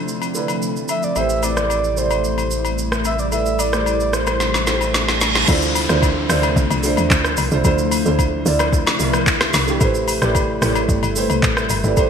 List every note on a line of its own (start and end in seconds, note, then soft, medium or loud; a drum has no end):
0.00 5.45 C3 medium
0.00 0.35 D3 medium
0.00 1.12 F3 medium
0.00 5.45 A3 medium
0.00 1.14 C4 medium
0.00 0.35 D4 medium
0.00 0.36 E4 medium
0.00 0.36 F4 medium
0.00 1.17 C5 medium
0.08 shaker medium
0.22 high agogo medium
0.22 shaker soft
0.35 1.00 D3 medium
0.35 1.00 D4 medium
0.35 1.01 E4 medium
0.35 1.01 F4 medium
0.35 1.01 B4 medium
0.35 shaker medium
0.48 high agogo medium
0.48 shaker medium
0.62 shaker medium
0.76 shaker soft
0.88 1.05 E5 loud
0.88 high agogo medium
0.88 shaker medium
1.03 1.18 D5 loud
1.03 shaker medium
1.16 5.44 A1 medium
1.16 5.44 G3 medium
1.16 1.38 A3 medium
1.16 5.44 E4 medium
1.16 1.38 E4 medium
1.16 1.38 G4 medium
1.16 1.39 B4 medium
1.16 1.39 C5 medium
1.16 1.45 E5 loud
1.16 high agogo medium
1.16 shaker medium
1.30 shaker medium
1.42 1.86 A3 medium
1.42 1.87 E4 medium
1.42 1.87 G4 medium
1.42 1.87 B4 medium
1.42 1.99 D5 loud
1.42 1.88 D5 medium
1.42 high agogo medium
1.42 shaker medium
1.57 cross-stick medium
1.57 shaker soft
1.70 high agogo medium
1.70 shaker medium
1.84 shaker soft
1.97 2.84 A3 medium
1.97 2.84 E4 medium
1.97 2.84 G4 medium
1.97 2.78 C5 medium
1.97 2.84 C5 medium
1.97 2.85 D5 medium
1.97 shaker medium
2.11 high agogo medium
2.11 shaker soft
2.24 shaker medium
2.38 high agogo medium
2.38 shaker medium
2.51 shaker medium
2.65 high agogo medium
2.65 shaker medium
2.78 shaker medium
2.92 cross-stick loud
2.92 shaker soft
3.05 3.19 E5 loud
3.05 high agogo medium
3.05 shaker medium
3.19 3.25 D5 medium
3.19 shaker medium
3.32 3.65 A3 medium
3.32 3.65 E4 medium
3.32 3.65 G4 medium
3.32 3.66 B4 medium
3.32 3.66 D5 medium
3.32 3.61 E5 loud
3.32 high agogo medium
3.32 shaker medium
3.46 shaker medium
3.59 4.15 D5 loud
3.59 high agogo medium
3.59 shaker loud
3.73 4.49 A3 medium
3.73 4.49 E4 medium
3.73 4.49 G4 medium
3.73 4.49 C5 medium
3.73 4.50 D5 medium
3.73 cross-stick medium
3.73 shaker soft
3.86 high agogo medium
3.86 shaker medium
4.00 shaker soft
4.13 5.22 C5 loud
4.13 cross-stick medium
4.13 shaker medium
4.27 cross-stick medium
4.27 high agogo medium
4.27 shaker medium
4.40 snare medium
4.40 reverse cymbal medium
4.40 shaker medium
4.54 snare soft
4.54 high agogo medium
4.54 shaker medium
4.67 5.32 A3 medium
4.67 5.33 E4 medium
4.67 5.33 G4 medium
4.67 5.33 A4 medium
4.67 5.34 C5 medium
4.67 snare medium
4.67 shaker medium
4.81 high agogo medium
4.81 shaker medium
4.94 snare medium
4.94 shaker medium
5.08 snare medium
5.08 shaker soft
5.21 snare medium
5.21 high agogo medium
5.21 shaker medium
5.35 snare medium
5.35 shaker medium
5.48 5.88 D2 loud
5.48 12.10 C3 medium
5.48 5.81 D3 medium
5.48 9.77 F3 medium
5.48 9.77 A3 medium
5.48 5.81 D4 medium
5.48 7.63 D4 medium
5.48 5.81 E4 medium
5.48 5.82 F4 medium
5.48 5.82 C5 loud
5.48 kick loud
5.48 crash medium
5.48 downlifter medium
5.48 high agogo medium
5.48 shaker medium
5.62 shaker medium
5.75 open hi-hat medium
5.75 high agogo medium
5.75 shaker loud
5.89 6.28 D2 loud
5.89 6.22 D3 medium
5.89 6.22 D4 medium
5.89 6.22 E4 medium
5.89 6.22 F4 medium
5.89 6.23 C5 loud
5.89 cross-stick medium
5.89 shaker medium
6.03 kick medium
6.03 high agogo medium
6.03 shaker medium
6.29 6.55 D2 loud
6.29 6.73 D3 medium
6.29 6.73 D4 medium
6.29 6.74 E4 medium
6.29 6.74 F4 medium
6.29 6.74 C5 loud
6.29 cross-stick loud
6.29 open hi-hat soft
6.29 shaker medium
6.43 high agogo medium
6.43 shaker medium
6.56 6.70 C2 loud
6.56 kick loud
6.56 shaker medium
6.70 6.97 C2 loud
6.70 high agogo medium
6.70 shaker medium
6.83 7.37 D3 medium
6.83 7.38 D4 medium
6.83 7.38 E4 medium
6.83 7.38 F4 medium
6.83 7.39 C5 loud
6.83 open hi-hat medium
6.83 shaker medium
6.97 7.10 E2 medium
6.97 high agogo medium
6.97 shaker medium
7.11 7.37 D2 loud
7.11 kick loud
7.11 clap medium
7.11 shaker medium
7.24 cross-stick loud
7.24 shaker soft
7.37 7.51 C2 medium
7.37 open hi-hat medium
7.37 high agogo medium
7.37 shaker medium
7.51 7.64 C2 loud
7.51 7.62 D3 medium
7.51 7.62 D4 medium
7.51 7.62 E4 medium
7.51 7.63 F4 medium
7.51 7.63 C5 loud
7.51 shaker medium
7.64 8.04 D2 loud
7.64 7.97 D3 medium
7.64 7.97 D4 medium
7.64 7.98 E4 medium
7.64 7.98 F4 medium
7.64 7.98 C5 loud
7.64 11.93 E5 medium
7.64 kick loud
7.64 high agogo medium
7.64 shaker medium
7.78 shaker medium
7.91 open hi-hat medium
7.91 high agogo medium
7.91 shaker loud
8.05 8.44 D2 loud
8.05 8.38 D3 loud
8.05 8.38 D4 medium
8.05 8.38 E4 medium
8.05 8.39 F4 medium
8.05 8.39 C5 loud
8.05 shaker soft
8.19 kick medium
8.19 high agogo medium
8.19 shaker medium
8.46 8.85 D2 loud
8.46 8.89 D3 medium
8.46 8.90 D4 medium
8.46 8.90 E4 medium
8.46 8.90 F4 medium
8.46 8.91 D5 loud
8.46 open hi-hat soft
8.46 shaker medium
8.59 cross-stick medium
8.59 high agogo medium
8.59 shaker medium
8.73 kick loud
8.73 shaker medium
8.87 snare medium
8.87 high agogo medium
8.87 shaker medium
8.99 9.52 C2 medium
8.99 9.54 D3 medium
8.99 9.54 D4 medium
8.99 9.54 E4 medium
8.99 9.55 F4 medium
8.99 9.08 A#4 medium
8.99 open hi-hat medium
8.99 shaker medium
9.08 9.58 B4 medium
9.13 cross-stick medium
9.13 high agogo medium
9.13 shaker medium
9.27 kick loud
9.27 clap medium
9.27 shaker medium
9.41 cross-stick loud
9.41 snare medium
9.41 shaker soft
9.53 9.80 C2 loud
9.53 snare medium
9.53 open hi-hat medium
9.53 high agogo medium
9.53 shaker medium
9.68 9.78 D3 medium
9.68 9.78 D4 medium
9.68 9.79 E4 medium
9.68 9.79 F4 medium
9.68 9.79 G4 medium
9.68 shaker medium
9.80 10.20 A1 loud
9.80 12.10 G3 medium
9.80 10.13 A3 medium
9.80 12.10 A3 medium
9.80 10.14 E4 medium
9.80 10.14 G4 medium
9.80 10.14 B4 medium
9.80 10.15 C5 loud
9.80 kick loud
9.80 high agogo medium
9.80 shaker medium
9.95 shaker medium
10.08 open hi-hat medium
10.08 high agogo medium
10.08 shaker loud
10.21 10.60 A1 loud
10.21 10.54 A3 loud
10.21 10.54 E4 medium
10.21 10.55 G4 medium
10.21 10.55 B4 medium
10.21 10.55 D5 loud
10.21 cross-stick medium
10.21 shaker medium
10.35 kick medium
10.35 high agogo medium
10.35 shaker medium
10.61 10.88 A1 loud
10.61 11.05 A3 medium
10.61 11.06 E4 medium
10.61 11.06 G4 medium
10.61 11.06 B4 medium
10.61 10.70 C#5 medium
10.61 cross-stick loud
10.61 open hi-hat soft
10.61 shaker medium
10.70 11.10 D5 loud
10.75 high agogo medium
10.75 shaker medium
10.89 11.02 G1 loud
10.89 kick loud
10.89 shaker medium
11.03 11.29 G1 medium
11.03 high agogo medium
11.03 shaker medium
11.16 11.70 A3 medium
11.16 11.70 E4 medium
11.16 11.70 G4 medium
11.16 11.71 B4 medium
11.16 11.71 C5 loud
11.16 open hi-hat medium
11.16 shaker medium
11.30 11.42 C2 medium
11.30 high agogo medium
11.30 shaker medium
11.43 11.69 A1 medium
11.43 kick loud
11.43 clap medium
11.43 shaker medium
11.57 cross-stick loud
11.57 shaker soft
11.70 11.83 G1 medium
11.70 open hi-hat medium
11.70 high agogo medium
11.70 shaker medium
11.84 11.99 G1 loud
11.84 11.94 A3 medium
11.84 11.95 E4 medium
11.84 11.95 G4 medium
11.84 11.95 B4 medium
11.84 11.95 D5 loud
11.84 shaker medium
11.97 12.10 A1 loud
11.97 12.10 A3 medium
11.97 12.10 E4 medium
11.97 12.10 G4 medium
11.97 12.10 B4 medium
11.97 12.10 C5 loud
11.97 kick loud
11.97 high agogo medium
11.97 shaker medium